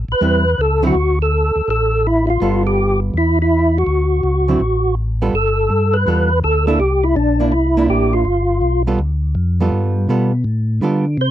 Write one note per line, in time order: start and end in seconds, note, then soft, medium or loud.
0.08 0.15 A1 soft
0.08 0.61 B4 loud
0.21 0.55 E2 medium
0.21 0.43 G3 soft
0.21 0.43 C4 medium
0.21 0.44 E4 medium
0.58 0.92 C#2 medium
0.58 0.85 A4 medium
0.82 0.94 D3 medium
0.82 0.94 F#3 medium
0.82 0.94 C4 medium
0.82 0.94 E4 medium
0.87 1.19 F#4 medium
0.94 1.51 D2 medium
1.22 1.69 A4 medium
1.55 1.62 D2 soft
1.68 2.38 A1 medium
1.68 2.07 A4 medium
2.07 2.26 E4 medium
2.27 2.29 E4 medium
2.27 2.63 F4 medium
2.40 3.10 G1 medium
2.40 3.15 G3 soft
2.40 3.15 B3 medium
2.40 3.15 F4 medium
2.40 3.15 A4 medium
2.67 3.00 G4 medium
3.14 3.83 E2 medium
3.14 3.39 E4 medium
3.42 3.78 E4 medium
3.78 4.95 F#4 medium
3.86 4.21 D2 medium
4.23 4.58 C#2 medium
4.48 4.59 D3 medium
4.48 4.60 F#3 medium
4.48 4.60 C4 medium
4.48 4.60 E4 soft
4.60 5.30 A1 medium
5.22 5.33 G3 medium
5.22 5.33 B3 medium
5.22 5.33 F4 medium
5.22 5.33 A4 medium
5.33 5.69 G1 medium
5.33 5.97 A4 medium
5.70 6.06 G2 medium
5.94 6.40 B4 loud
6.07 6.42 E2 medium
6.07 6.29 G3 soft
6.07 6.29 B3 soft
6.07 6.29 F4 soft
6.07 6.29 A4 medium
6.44 6.79 D2 medium
6.44 6.66 A4 loud
6.67 6.79 A#3 medium
6.67 6.79 D4 medium
6.67 6.79 E4 medium
6.67 6.79 A4 medium
6.80 7.15 C2 medium
6.80 7.05 G4 medium
7.04 7.15 E4 medium
7.16 7.52 A#1 medium
7.16 7.54 D4 medium
7.40 7.52 A#3 soft
7.40 7.52 D4 medium
7.40 7.52 E4 medium
7.52 7.88 C2 medium
7.52 7.87 E4 medium
7.77 8.24 A#3 medium
7.77 8.24 D4 medium
7.77 8.24 E4 medium
7.88 8.25 A1 medium
7.88 8.15 G4 medium
8.13 8.83 F4 medium
8.25 8.61 G1 medium
8.61 8.98 B1 medium
8.87 8.98 G3 soft
8.87 8.99 B3 soft
8.87 8.98 F4 medium
8.87 8.99 A4 medium
8.99 9.35 D2 medium
9.35 9.71 F2 medium
9.61 10.07 G3 medium
9.61 10.07 B3 medium
9.61 10.07 F4 medium
9.61 10.07 A4 medium
9.72 10.08 G2 medium
10.09 10.44 B2 medium
10.09 10.31 G3 medium
10.09 10.31 B3 medium
10.09 10.31 F4 medium
10.09 10.31 A4 medium
10.44 10.80 A2 medium
10.81 11.17 D3 medium
10.81 11.04 G3 medium
10.81 11.04 B3 soft
10.81 11.04 F4 medium
10.81 11.05 A4 medium
11.17 11.31 C3 medium
11.17 11.31 C5 medium